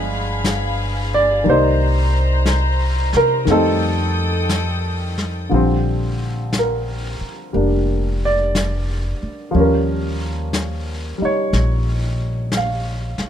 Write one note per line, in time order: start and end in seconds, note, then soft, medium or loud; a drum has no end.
0.00 1.41 G1 medium
0.00 1.44 F3 medium
0.00 1.45 G#3 soft
0.00 1.46 B3 soft
0.00 1.47 D4 medium
0.00 1.43 G#4 medium
0.00 1.43 B4 medium
0.00 0.43 F5 medium
0.00 1.43 F5 medium
0.00 1.43 B5 medium
0.44 brush sweep soft
0.44 snare soft
0.44 hi-hat pedal soft
1.14 1.47 D5 medium
1.44 3.10 C2 medium
1.44 3.44 D#3 soft
1.44 3.46 G3 soft
1.44 3.48 A#3 soft
1.44 3.45 C5 medium
1.44 3.45 A#5 medium
1.44 brush sweep soft
1.49 3.46 D#4 medium
1.49 2.44 C5 medium
1.49 3.49 D5 soft
2.46 brush sweep soft
2.46 snare soft
2.46 hi-hat pedal soft
3.13 3.45 C3 medium
3.13 3.46 A#4 medium
3.13 snare soft
3.45 5.47 F2 medium
3.45 5.50 D#3 soft
3.45 5.51 G3 soft
3.45 5.52 A3 soft
3.45 5.49 A4 medium
3.45 5.49 G5 medium
3.45 5.49 D#6 medium
3.45 brush sweep soft
3.45 snare soft
3.50 5.53 C4 medium
3.50 5.50 D#4 medium
3.50 5.16 A4 medium
4.49 brush sweep soft
4.49 snare soft
4.49 hi-hat pedal soft
5.18 snare soft
5.49 7.16 A#1 medium
5.49 9.53 D3 soft
5.49 9.50 F3 soft
5.49 7.52 G3 soft
5.49 brush sweep soft
5.54 9.55 C4 medium
6.53 brush sweep soft
6.53 snare soft
6.53 hi-hat pedal soft
6.59 8.20 A#4 medium
7.21 muted upright bass stroke soft
7.53 9.17 F1 medium
7.53 9.52 G3 soft
7.53 9.53 A#3 soft
7.53 9.55 D4 soft
7.53 brush sweep soft
8.25 8.55 D5 medium
8.55 brush sweep soft
8.55 snare soft
8.55 hi-hat pedal soft
9.23 muted upright bass stroke soft
9.51 11.16 D#2 medium
9.51 13.29 F3 soft
9.51 11.17 G3 soft
9.51 13.29 A#3 soft
9.51 brush sweep soft
9.56 13.29 C#4 medium
9.60 11.19 A#4 medium
10.53 brush sweep soft
10.53 snare soft
10.53 hi-hat pedal medium
11.18 13.29 G3 soft
11.18 muted upright bass stroke soft
11.22 13.29 D#4 soft
11.22 11.54 C#5 medium
11.53 13.15 A#1 medium
11.53 brush sweep soft
11.53 snare soft
12.52 brush sweep soft
12.52 snare soft
12.52 hi-hat pedal soft
12.57 13.29 F5 medium
13.18 muted upright bass stroke soft
13.18 snare soft